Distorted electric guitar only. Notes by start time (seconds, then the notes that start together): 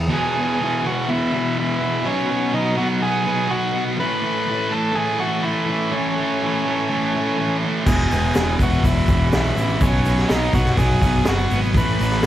0.09 E2 B2 E3
0.35 B2 E3
0.60 E2 B2 E3
0.83 E2 B2 E3
1.07 E2 B2 E3
1.32 E2 B2 E3
1.56 E2 B2 E3
1.80 B2 E3
2.03 B2 F#3 B3
2.28 F#3 B3
2.52 B2 F#3 B3
2.75 B2 F#3 B3
2.99 B2 F#3 B3
3.24 B2 F#3 B3
3.48 B2 F#3 B3
3.73 F#3 B3
3.97 A2 E3 A3
4.22 E3 A3
4.45 A2 E3 A3
4.69 A2 E3 A3
4.93 A2 E3 A3
5.18 A2 E3 A3
5.42 A2 E3 A3
5.66 E3 A3
5.91 A2 E3 A3
6.16 E3 A3
6.41 A2 E3 A3
6.64 A2 E3 A3
6.89 A2 E3 A3
7.14 A2 E3 A3
7.37 A2 E3 A3
7.62 E3 A3
7.86 E2 B2 E3
8.11 B2 E3
8.37 E2 B2 E3
8.59 E2 B2 E3
8.85 E2 B2 E3
9.10 E2 B2 E3
9.34 E2 B2 E3
9.57 B2 E3
9.82 B2 F#3 B3
10.06 F#3 B3
10.30 B2 F#3 B3
10.54 B2 F#3 B3
10.77 B2 F#3 B3
11.01 B2 F#3 B3
11.25 B2 F#3 B3
11.50 F#3 B3
11.73 A2 E3 A3
11.98 E3 A3
12.21 A2 E3